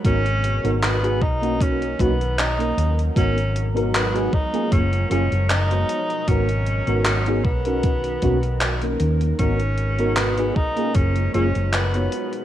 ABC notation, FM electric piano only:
X:1
M:4/4
L:1/16
Q:"Swing 16ths" 1/4=77
K:G#dor
V:1 name="FM electric piano"
[B,DFA] z2 [B,DFA]2 [B,DFG] z [A,CDF]3 [A,CDF] z2 [A,CDA]3 | [B,DFA] z2 [B,DFA]2 [B,DFG] z [A,CEG]3 [A,CEG] z2 [B,DFc]3 | [B,DFA] z2 [B,DFA]2 [B,DFG] z [CDFA]3 [A,CDF] z2 [A,CDA]3 | [B,DFA] z2 [B,DFA]2 [B,DFG] z [A,CEG]3 [A,CEG] z2 [B,DFc]3 |]